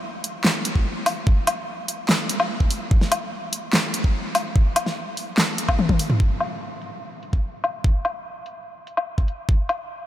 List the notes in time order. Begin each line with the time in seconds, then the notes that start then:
0.24 closed hi-hat
0.45 snare, clap
0.65 closed hi-hat
0.75 kick
1.06 open hi-hat, low woodblock
1.27 kick
1.47 closed hi-hat, low woodblock
1.88 closed hi-hat
2.09 snare, clap
2.29 closed hi-hat
2.40 low woodblock
2.60 kick
2.71 open hi-hat
2.91 kick
3.01 snare
3.12 closed hi-hat, low woodblock
3.53 closed hi-hat
3.73 snare, clap
3.94 closed hi-hat
4.04 kick
4.35 open hi-hat, low woodblock
4.56 kick
4.76 closed hi-hat, low woodblock
4.86 snare
5.17 open hi-hat
5.38 snare, clap
5.58 closed hi-hat
5.69 kick, low woodblock
5.79 high tom
5.89 kick, high tom
5.99 open hi-hat
6.10 mid tom
6.20 kick
6.40 closed hi-hat, low woodblock
6.82 closed hi-hat
7.23 closed hi-hat
7.33 kick
7.64 closed hi-hat, low woodblock
7.84 kick
8.05 closed hi-hat, low woodblock
8.46 closed hi-hat
8.87 closed hi-hat
8.97 low woodblock
9.18 kick
9.28 closed hi-hat
9.49 kick
9.69 closed hi-hat, low woodblock